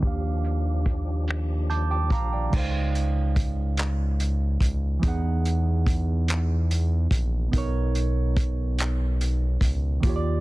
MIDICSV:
0, 0, Header, 1, 5, 480
1, 0, Start_track
1, 0, Tempo, 833333
1, 17, Time_signature, 6, 3, 24, 8
1, 5993, End_track
2, 0, Start_track
2, 0, Title_t, "Reed electric piano"
2, 0, Program_c, 0, 4
2, 0, Control_c, 0, 64, 127
2, 0, Note_on_c, 0, 51, 73
2, 2, Note_on_c, 0, 58, 62
2, 14, Note_on_c, 0, 62, 70
2, 24, Control_c, 0, 64, 0
2, 29, Note_on_c, 0, 67, 60
2, 40, Note_on_c, 0, 77, 80
2, 110, Control_c, 0, 64, 127
2, 970, Note_off_c, 0, 77, 0
2, 977, Note_on_c, 0, 91, 62
2, 978, Note_on_c, 0, 81, 75
2, 981, Note_on_c, 0, 86, 49
2, 1089, Note_off_c, 0, 81, 0
2, 1091, Note_off_c, 0, 91, 0
2, 1093, Note_off_c, 0, 86, 0
2, 1099, Note_on_c, 0, 79, 68
2, 1100, Note_on_c, 0, 86, 67
2, 1104, Note_on_c, 0, 81, 62
2, 1209, Note_off_c, 0, 79, 0
2, 1213, Note_off_c, 0, 86, 0
2, 1215, Note_off_c, 0, 81, 0
2, 1222, Note_on_c, 0, 77, 73
2, 1222, Note_on_c, 0, 82, 73
2, 1333, Note_off_c, 0, 82, 0
2, 1336, Note_off_c, 0, 77, 0
2, 1340, Note_on_c, 0, 79, 50
2, 1345, Note_on_c, 0, 74, 47
2, 1419, Note_off_c, 0, 51, 0
2, 1427, Note_off_c, 0, 58, 0
2, 1432, Note_off_c, 0, 62, 0
2, 1440, Note_off_c, 0, 67, 0
2, 1440, Note_on_c, 0, 49, 74
2, 1449, Note_on_c, 0, 56, 70
2, 1463, Note_on_c, 0, 63, 67
2, 1464, Control_c, 0, 64, 0
2, 1475, Note_on_c, 0, 72, 65
2, 1489, Note_on_c, 0, 77, 82
2, 1557, Control_c, 0, 64, 127
2, 1566, Note_off_c, 0, 79, 0
2, 1569, Note_off_c, 0, 74, 0
2, 2865, Note_off_c, 0, 49, 0
2, 2870, Note_off_c, 0, 56, 0
2, 2876, Note_on_c, 0, 52, 78
2, 2877, Note_off_c, 0, 63, 0
2, 2883, Note_off_c, 0, 72, 0
2, 2889, Note_on_c, 0, 59, 72
2, 2890, Note_off_c, 0, 77, 0
2, 2903, Note_on_c, 0, 63, 73
2, 2904, Control_c, 0, 64, 0
2, 2915, Note_on_c, 0, 68, 64
2, 2926, Note_on_c, 0, 78, 89
2, 3022, Control_c, 0, 64, 127
2, 4303, Note_off_c, 0, 52, 0
2, 4310, Note_off_c, 0, 59, 0
2, 4314, Note_on_c, 0, 47, 71
2, 4317, Note_off_c, 0, 63, 0
2, 4323, Note_off_c, 0, 68, 0
2, 4328, Note_off_c, 0, 78, 0
2, 4328, Note_on_c, 0, 59, 66
2, 4343, Note_on_c, 0, 63, 68
2, 4344, Control_c, 0, 64, 0
2, 4355, Note_on_c, 0, 70, 64
2, 4365, Note_on_c, 0, 73, 92
2, 4433, Control_c, 0, 64, 127
2, 5742, Note_off_c, 0, 47, 0
2, 5749, Note_off_c, 0, 59, 0
2, 5757, Note_off_c, 0, 63, 0
2, 5762, Note_on_c, 0, 51, 74
2, 5763, Note_off_c, 0, 70, 0
2, 5768, Note_off_c, 0, 73, 0
2, 5773, Note_on_c, 0, 58, 69
2, 5784, Control_c, 0, 64, 0
2, 5787, Note_on_c, 0, 65, 69
2, 5799, Note_on_c, 0, 67, 75
2, 5814, Note_on_c, 0, 73, 64
2, 5833, Note_off_c, 0, 73, 0
2, 5851, Note_on_c, 0, 74, 82
2, 5895, Control_c, 0, 64, 127
2, 5993, Note_off_c, 0, 51, 0
2, 5993, Note_off_c, 0, 58, 0
2, 5993, Note_off_c, 0, 65, 0
2, 5993, Note_off_c, 0, 67, 0
2, 5993, Note_off_c, 0, 74, 0
2, 5993, End_track
3, 0, Start_track
3, 0, Title_t, "Tonewheel organ"
3, 0, Program_c, 1, 16
3, 20, Note_on_c, 1, 53, 60
3, 21, Note_on_c, 1, 62, 61
3, 25, Note_on_c, 1, 67, 65
3, 1444, Note_off_c, 1, 53, 0
3, 1445, Note_off_c, 1, 62, 0
3, 1446, Note_off_c, 1, 67, 0
3, 5993, End_track
4, 0, Start_track
4, 0, Title_t, "Analog synth bass"
4, 0, Program_c, 2, 38
4, 18, Note_on_c, 2, 39, 101
4, 1214, Note_on_c, 2, 34, 82
4, 1223, Note_off_c, 2, 39, 0
4, 1432, Note_off_c, 2, 34, 0
4, 1460, Note_on_c, 2, 37, 104
4, 2635, Note_off_c, 2, 37, 0
4, 2654, Note_on_c, 2, 37, 97
4, 2872, Note_off_c, 2, 37, 0
4, 2900, Note_on_c, 2, 40, 125
4, 4075, Note_off_c, 2, 40, 0
4, 4097, Note_on_c, 2, 34, 108
4, 4314, Note_off_c, 2, 34, 0
4, 4340, Note_on_c, 2, 35, 108
4, 5515, Note_off_c, 2, 35, 0
4, 5537, Note_on_c, 2, 37, 97
4, 5754, Note_off_c, 2, 37, 0
4, 5782, Note_on_c, 2, 39, 107
4, 5993, Note_off_c, 2, 39, 0
4, 5993, End_track
5, 0, Start_track
5, 0, Title_t, "Drums"
5, 15, Note_on_c, 9, 36, 92
5, 16, Note_on_c, 9, 42, 59
5, 72, Note_off_c, 9, 36, 0
5, 73, Note_off_c, 9, 42, 0
5, 255, Note_on_c, 9, 42, 38
5, 313, Note_off_c, 9, 42, 0
5, 494, Note_on_c, 9, 36, 92
5, 500, Note_on_c, 9, 42, 47
5, 552, Note_off_c, 9, 36, 0
5, 557, Note_off_c, 9, 42, 0
5, 736, Note_on_c, 9, 42, 66
5, 752, Note_on_c, 9, 26, 103
5, 793, Note_off_c, 9, 42, 0
5, 809, Note_off_c, 9, 26, 0
5, 982, Note_on_c, 9, 42, 51
5, 1039, Note_off_c, 9, 42, 0
5, 1212, Note_on_c, 9, 36, 87
5, 1220, Note_on_c, 9, 42, 54
5, 1269, Note_off_c, 9, 36, 0
5, 1278, Note_off_c, 9, 42, 0
5, 1457, Note_on_c, 9, 36, 105
5, 1459, Note_on_c, 9, 49, 96
5, 1514, Note_off_c, 9, 36, 0
5, 1517, Note_off_c, 9, 49, 0
5, 1700, Note_on_c, 9, 42, 45
5, 1758, Note_off_c, 9, 42, 0
5, 1936, Note_on_c, 9, 36, 100
5, 1939, Note_on_c, 9, 42, 76
5, 1994, Note_off_c, 9, 36, 0
5, 1997, Note_off_c, 9, 42, 0
5, 2174, Note_on_c, 9, 42, 78
5, 2190, Note_on_c, 9, 39, 124
5, 2231, Note_off_c, 9, 42, 0
5, 2247, Note_off_c, 9, 39, 0
5, 2419, Note_on_c, 9, 42, 56
5, 2477, Note_off_c, 9, 42, 0
5, 2652, Note_on_c, 9, 36, 87
5, 2659, Note_on_c, 9, 42, 81
5, 2710, Note_off_c, 9, 36, 0
5, 2717, Note_off_c, 9, 42, 0
5, 2898, Note_on_c, 9, 36, 109
5, 2898, Note_on_c, 9, 42, 59
5, 2955, Note_off_c, 9, 36, 0
5, 2956, Note_off_c, 9, 42, 0
5, 3142, Note_on_c, 9, 42, 47
5, 3200, Note_off_c, 9, 42, 0
5, 3378, Note_on_c, 9, 36, 99
5, 3384, Note_on_c, 9, 42, 71
5, 3436, Note_off_c, 9, 36, 0
5, 3441, Note_off_c, 9, 42, 0
5, 3619, Note_on_c, 9, 42, 71
5, 3635, Note_on_c, 9, 39, 112
5, 3677, Note_off_c, 9, 42, 0
5, 3693, Note_off_c, 9, 39, 0
5, 3865, Note_on_c, 9, 42, 55
5, 3922, Note_off_c, 9, 42, 0
5, 4094, Note_on_c, 9, 36, 91
5, 4101, Note_on_c, 9, 42, 79
5, 4152, Note_off_c, 9, 36, 0
5, 4158, Note_off_c, 9, 42, 0
5, 4339, Note_on_c, 9, 36, 99
5, 4341, Note_on_c, 9, 42, 60
5, 4396, Note_off_c, 9, 36, 0
5, 4399, Note_off_c, 9, 42, 0
5, 4580, Note_on_c, 9, 42, 48
5, 4638, Note_off_c, 9, 42, 0
5, 4819, Note_on_c, 9, 36, 102
5, 4824, Note_on_c, 9, 42, 73
5, 4876, Note_off_c, 9, 36, 0
5, 4882, Note_off_c, 9, 42, 0
5, 5061, Note_on_c, 9, 42, 76
5, 5076, Note_on_c, 9, 39, 126
5, 5118, Note_off_c, 9, 42, 0
5, 5134, Note_off_c, 9, 39, 0
5, 5305, Note_on_c, 9, 42, 57
5, 5362, Note_off_c, 9, 42, 0
5, 5535, Note_on_c, 9, 36, 87
5, 5542, Note_on_c, 9, 42, 78
5, 5592, Note_off_c, 9, 36, 0
5, 5600, Note_off_c, 9, 42, 0
5, 5779, Note_on_c, 9, 36, 100
5, 5779, Note_on_c, 9, 42, 63
5, 5836, Note_off_c, 9, 36, 0
5, 5836, Note_off_c, 9, 42, 0
5, 5993, End_track
0, 0, End_of_file